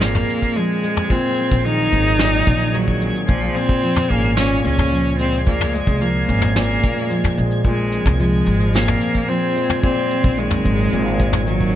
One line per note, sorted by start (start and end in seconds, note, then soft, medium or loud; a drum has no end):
0.00 0.22 G#1 medium
0.00 1.09 A#2 medium
0.00 0.55 F3 medium
0.00 1.08 F3 medium
0.00 0.58 A#3 medium
0.00 1.92 C4 medium
0.00 3.25 C4 medium
0.00 11.75 G#4 medium
0.00 11.75 G#6 medium
0.00 snare medium
0.00 cabasa soft
0.15 mid tom medium
0.29 cabasa medium
0.42 kick medium
0.42 cabasa medium
0.56 1.16 F3 medium
0.56 1.12 G#3 medium
0.56 cabasa soft
0.83 2.22 G#3 medium
0.83 cabasa medium
0.97 mid tom medium
1.10 2.18 A#2 medium
1.10 3.27 F#3 medium
1.10 1.66 C4 loud
1.10 kick loud
1.10 cabasa soft
1.51 1.86 A#1 medium
1.51 kick medium
1.51 cabasa soft
1.65 2.72 D#3 medium
1.65 2.76 D#4 loud
1.65 cabasa soft
1.92 2.40 G#1 medium
1.92 3.34 C4 medium
1.92 cabasa medium
2.06 cabasa soft
2.19 3.27 A#2 medium
2.19 snare medium
2.19 cabasa soft
2.47 3.09 A#1 medium
2.47 kick loud
2.47 cabasa medium
2.61 cabasa medium
2.74 3.34 D#3 medium
2.74 3.27 F#3 medium
2.74 cabasa soft
2.88 kick medium
3.01 4.40 G#3 medium
3.01 cabasa medium
3.15 cabasa medium
3.28 3.48 A#1 medium
3.28 4.36 A#2 medium
3.28 7.61 A#2 medium
3.28 3.57 F3 medium
3.28 5.45 A#3 medium
3.28 kick loud
3.28 cabasa medium
3.55 4.12 C4 loud
3.55 cabasa medium
3.69 kick loud
3.69 cabasa medium
3.83 4.92 F3 medium
3.83 cabasa soft
3.96 mid tom medium
4.10 4.58 G#1 medium
4.10 4.37 A#3 loud
4.10 6.27 C#4 medium
4.10 cabasa medium
4.24 cabasa medium
4.37 5.46 A#2 medium
4.37 4.63 C#4 loud
4.37 snare medium
4.37 cabasa soft
4.65 5.81 C#2 medium
4.65 5.16 C#4 loud
4.65 cabasa medium
4.78 kick medium
4.78 mid tom medium
4.92 6.01 F3 medium
4.92 cabasa soft
5.19 7.37 G#3 medium
5.19 5.45 C4 medium
5.19 cabasa medium
5.32 cabasa medium
5.46 6.55 A#2 medium
5.46 7.63 G#3 medium
5.46 5.75 A#3 medium
5.46 kick medium
5.46 cabasa soft
5.61 mid tom medium
5.74 6.03 G#3 medium
5.74 cabasa medium
5.87 6.22 C2 medium
5.87 kick medium
5.87 cabasa soft
6.01 7.10 F3 medium
6.01 6.56 A#3 medium
6.01 cabasa soft
6.28 6.77 G#1 medium
6.28 7.70 C#4 medium
6.28 cabasa medium
6.42 mid tom medium
6.42 cabasa medium
6.55 7.64 A#2 medium
6.55 7.34 A#3 medium
6.55 snare medium
6.55 cabasa soft
6.84 kick loud
6.84 cabasa medium
6.98 cabasa medium
7.10 8.19 F3 medium
7.10 cabasa soft
7.24 kick medium
7.24 mid tom medium
7.38 7.99 A#1 medium
7.38 8.77 G#3 medium
7.38 cabasa medium
7.51 cabasa soft
7.64 8.73 A#2 medium
7.64 9.81 F3 medium
7.64 8.16 G#3 medium
7.64 11.75 C4 medium
7.64 kick loud
7.64 cabasa soft
7.92 cabasa medium
8.06 8.40 C2 medium
8.06 kick loud
8.06 mid tom medium
8.06 cabasa soft
8.20 9.27 F3 medium
8.20 8.76 G#3 medium
8.20 cabasa soft
8.46 8.95 G#1 medium
8.46 10.64 C4 medium
8.46 cabasa medium
8.61 cabasa soft
8.74 9.82 A#2 medium
8.74 9.30 A#3 medium
8.74 snare medium
8.74 cabasa medium
8.88 mid tom medium
9.01 cabasa medium
9.15 kick medium
9.15 cabasa medium
9.28 9.89 F3 medium
9.28 9.83 C4 medium
9.28 cabasa soft
9.55 10.95 G#3 medium
9.55 cabasa medium
9.70 mid tom medium
9.70 cabasa medium
9.83 10.91 A#2 medium
9.83 11.75 F#3 medium
9.83 10.40 C4 medium
9.83 kick loud
9.83 cabasa soft
10.10 cabasa medium
10.23 10.59 A#1 medium
10.23 kick loud
10.23 cabasa soft
10.37 11.45 D#3 medium
10.37 11.46 G#3 medium
10.37 cabasa soft
10.51 mid tom medium
10.65 10.91 G#1 medium
10.65 11.75 C4 medium
10.65 cabasa medium
10.78 cabasa soft
10.81 cabasa soft
10.83 cabasa soft
10.85 cabasa soft
10.88 cabasa soft
10.90 11.75 G#1 medium
10.90 11.75 A#2 medium
10.90 cabasa soft
10.93 cabasa medium
11.20 kick medium
11.20 cabasa medium
11.33 mid tom medium
11.33 cabasa medium
11.46 11.75 D#3 medium
11.46 11.75 F#3 loud
11.46 cabasa soft
11.61 kick medium